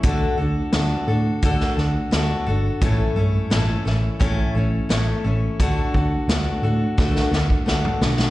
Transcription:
<<
  \new Staff \with { instrumentName = "Steel-string acoustic guitar" } { \time 4/4 \key d \lydian \tempo 4 = 86 <d a d' fis' a'>8 <d' fis' a'>8 <a d' fis' a'>8 <d' fis' a'>8 <d a d' fis' a'>8 <d' fis' a'>8 <a d' fis' a'>8 <d' fis' a'>8 | <a, e a cis' e' a'>8 <a cis' e' a'>8 <a cis' e' a'>8 <a cis' e' a'>8 <a, e a cis' e' a'>8 <a cis' e' a'>8 <a cis' e' a'>8 <a cis' e' a'>8 | <d a d' fis' a'>8 <d' fis' a'>8 <a d' fis' a'>8 <d' fis' a'>8 <d a d' fis' a'>8 <d' fis' a'>8 <a d' fis' a'>8 <d' fis' a'>8 | }
  \new Staff \with { instrumentName = "Fingered electric bass" } { \clef bass \time 4/4 \key d \lydian d,8 d,8 d,8 a,8 d,8 d,8 d,8 g,,8 | a,,8 g,8 a,,8 a,,8 a,,8 a,,8 a,,8 a,,8 | d,8 d,8 d,8 a,8 d,8 d,8 d,8 b,,8 | }
  \new DrumStaff \with { instrumentName = "Drums" } \drummode { \time 4/4 <hh bd>4 <hh sn>4 <hh bd>16 sn16 sn8 <hh sn>4 | <hh bd>4 <hh sn>8 sn8 <hh bd>4 <hh sn>4 | <hh bd>8 bd8 <hh sn>4 <bd sn>16 sn16 sn16 bd16 sn16 toml16 sn16 sn16 | }
>>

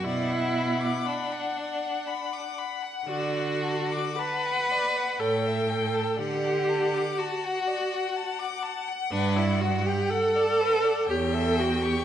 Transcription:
<<
  \new Staff \with { instrumentName = "Violin" } { \time 3/4 \key d \major \tempo 4 = 60 fis''2.~ | fis''2 g''4 | fis''2.~ | fis''2 g''4 | }
  \new Staff \with { instrumentName = "Violin" } { \time 3/4 \key d \major d''16 fis''16 b''16 d'''16 b''16 fis''16 d''16 fis''16 b''16 d'''16 b''16 fis''16 | d''16 fis''16 a''16 d'''16 a''16 fis''16 d''16 fis''16 cis''16 e''16 g''16 a''16 | d''16 fis''16 a''16 d'''16 a''16 fis''16 d''16 fis''16 a''16 d'''16 a''16 fis''16 | b'16 d''16 fis''16 g''16 fis''16 d''16 b'16 d''16 cis''16 e''16 g''16 cis'''16 | }
  \new Staff \with { instrumentName = "Viola" } { \time 3/4 \key d \major e'4 d'4. r8 | fis'4 b'4 a'4 | g'4 fis'4. r8 | d'16 e'16 fis'16 g'16 a'4 g'16 a'16 fis'16 g'16 | }
  \new Staff \with { instrumentName = "Cello" } { \clef bass \time 3/4 \key d \major b,4 r2 | d4 r4 a,4 | d4 r2 | g,4 r4 e,4 | }
>>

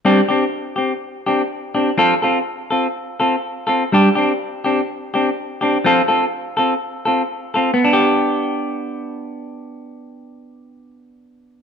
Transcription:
\new Staff \with { instrumentName = "Clean electric guitar" } { \time 4/4 \key g \mixolydian \tempo 4 = 124 <g c' d' g'>8 <c' d' g'>8 r8 <c' g'>8 r8 <c' d' g'>8 r8 <c' d' g'>8 | <f c' f' a'>8 <c' f' a'>8 r8 <c' f' a'>8 r8 <c' f' a'>8 r8 <c' f' a'>8 | <g d' g'>8 <c' d' g'>8 r8 <c' d' g'>8 r8 <c' d' g'>8 r8 <c' d' g'>8 | <f c' f' a'>8 <c' f' a'>8 r8 <c' f' a'>8 r8 <c' f' a'>8 r8 <c' f' a'>8 |
<b d' g'>1~ | <b d' g'>1 | }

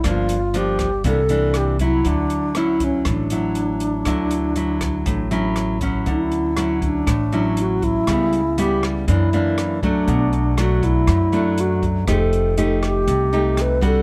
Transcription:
<<
  \new Staff \with { instrumentName = "Alto flute" } { \time 4/4 \key d \major \tempo 4 = 120 f'4 g'4 a'4 g'8 e'8 | d'4 e'8 cis'8 d'2~ | d'2. r4 | e'4. d'4. fis'8 e'8~ |
e'4 g'8 r8 e'4. d'8~ | d'4 fis'8 e'4. fis'8 r8 | a'4. g'4. b'8 a'8 | }
  \new Staff \with { instrumentName = "Nylon-string guitar" } { \time 4/4 \key d \major << { <f bes d'>8 r8 <f bes d'>8 r8 <e bes d'>8 <e bes d'>4 <fis e'>8~ | <fis e'>4 <fis cis' e'>4. <fis e'>4. | <fis e'>4 <fis e'>4. <fis cis' e'>4 <fis cis' e'>8~ | <fis cis' e'>4 <fis cis' e'>4 r8 <fis cis' e'>4. |
<g b e'>8 r8 <g b e'>4 <e ais d'>8 <e ais d'>4 <fis a d'>8~ | <fis a d'>4 <fis a d'>4. <fis a d'>4. | <a ees' g'>4 <a ees' g'>4. <a ees' g'>4 <g d' fis'>8 | } \\ { g,2 c2 | d2 a,2 | d2 a,2 | d2 a,2 |
cis2 fis,2 | b,2 fis,2 | f2 c2 | } >> }
  \new Staff \with { instrumentName = "Upright bass" } { \clef bass \time 4/4 \key d \major g,,2 c,2 | d,2 a,,2 | d,2 a,,2 | d,2 a,,2 |
cis,2 fis,2 | b,,2 fis,2 | f,,2 c,2 | }
  \new DrumStaff \with { instrumentName = "Drums" } \drummode { \time 4/4 <hh bd ss>8 hh8 hh8 <hh bd ss>8 <hh bd>8 hh8 <hh ss>8 <hh bd>8 | <hh bd>8 hh8 <hh ss>8 <hh bd>8 <hh bd ss>8 hh8 hh8 hh8 | <hh bd ss>8 hh8 hh8 <hh bd ss>8 <hh bd>8 hh8 <hh ss>8 <hh bd>8 | <hh bd>8 hh8 <hh ss>8 <hh bd>8 <hh bd ss>8 hh8 hh8 <hh bd>8 |
<hh bd ss>8 hh8 hh8 <hh ss>8 <hh bd>8 hh8 <hh ss>8 <hh bd>8 | <hh bd>8 hh8 <hh ss>8 <hh bd>8 <hh bd ss>8 hh8 hh8 <hh bd>8 | <hh bd ss>8 hh8 hh8 <hh ss>8 <hh bd>8 hh8 <hh ss>8 <hh bd>8 | }
>>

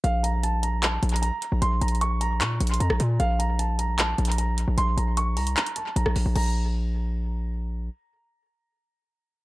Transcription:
<<
  \new Staff \with { instrumentName = "Grand piano" } { \time 4/4 \key bes \minor \tempo 4 = 152 f''8 bes''8 a''8 bes''8 a''8. bes''16 bes''4 | c'''8 bes''8 des'''8 bes''8 des'''8. c'''16 bes''8 r8 | f''8 bes''8 a''8 bes''8 a''8. bes''16 bes''4 | c'''8 bes''8 des'''8 bes''8 bes''8 a''8 bes''4 |
bes''2. r4 | r1 | }
  \new Staff \with { instrumentName = "808-style bass" } { \clef bass \time 4/4 \key bes \minor bes,,2~ bes,,8 bes,,8. r8 bes,,16 | bes,,8 bes,,4. bes,8 bes,,8 f,16 bes,,16 bes,8 | bes,,2~ bes,,8 bes,,4~ bes,,16 bes,,16 | bes,,8 bes,,4 c,8 r4 bes,,16 bes,,16 bes,,16 bes,,16 |
bes,,1 | r1 | }
  \new DrumStaff \with { instrumentName = "Drums" } \drummode { \time 4/4 hh8 hh8 hh8 hh8 \tuplet 3/2 { <hc hh>16 r16 r16 hh16 hh16 hh16 } hh8 hh8 | \tuplet 3/2 { hh16 r16 r16 hh16 hh16 hh16 } hh8 hh8 \tuplet 3/2 { <hc hh>16 r16 r16 hh16 hh16 hh16 } hh16 ss16 hh8 | hh8 hh8 hh8 hh8 \tuplet 3/2 { <hc hh>16 r16 r16 hh16 hh16 hh16 } hh8 hh8 | hh8 hh8 hh8 <hh hho>16 hh16 <hc hh>16 hh16 hh8 hh16 ss16 hho8 |
cymc4 r4 r4 r4 | r4 r4 r4 r4 | }
>>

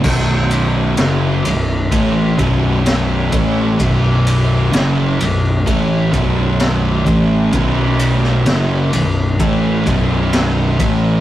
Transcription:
<<
  \new Staff \with { instrumentName = "Distorted electric guitar" } { \clef bass \time 4/4 \key c \lydian \tempo 4 = 64 <b,, fis, b,>4 <fis, cis fis>8 <b,, fis,>8 <a, e a>8 <b,, fis, b,>4 <a, e a>8 | <b,, fis, b,>4 <fis, cis fis>8 <b,, fis,>8 <a, e a>8 <b,, fis, b,>4 <a, e a>8 | <b,, fis, b,>4 <fis, cis fis>8 <b,, fis,>8 <a, e a>8 <b,, fis, b,>4 <a, e a>8 | }
  \new Staff \with { instrumentName = "Distorted electric guitar" } { \clef bass \time 4/4 \key c \lydian <b,, fis, b,>4 <fis, cis fis>8 <b,, fis,>8 <a, e a>8 <b,, fis, b,>4 <a, e a>8 | <b,, fis, b,>4 <fis, cis fis>8 <b,, fis,>8 <a, e a>8 <b,, fis, b,>4 <a, e a>8 | <b,, fis, b,>4 <fis, cis fis>8 <b,, fis,>8 <a, e a>8 <b,, fis, b,>4 <a, e a>8 | }
  \new Staff \with { instrumentName = "Picked electric bass" } { \clef bass \time 4/4 \key c \lydian b,,,4 fis,,8 b,,,8 a,,8 b,,,4 a,,8 | b,,,4 fis,,8 b,,,8 a,,8 b,,,4 a,,8 | b,,,4 fis,,8 b,,,8 a,,8 b,,,4 a,,8 | }
  \new DrumStaff \with { instrumentName = "Drums" } \drummode { \time 4/4 <cymc bd>8 cymr8 <cymr sn>8 cymr8 <bd cymr>8 <bd cymr>8 <cymr sn>8 <bd cymr>8 | <bd cymr>8 cymr8 <cymr sn>8 cymr8 <bd cymr>8 <bd cymr>8 <cymr sn>8 <bd cymr>8 | <bd cymr>8 cymr16 sn16 <cymr sn>8 cymr8 <bd cymr>8 <bd cymr>8 <cymr sn>8 <bd cymr>8 | }
>>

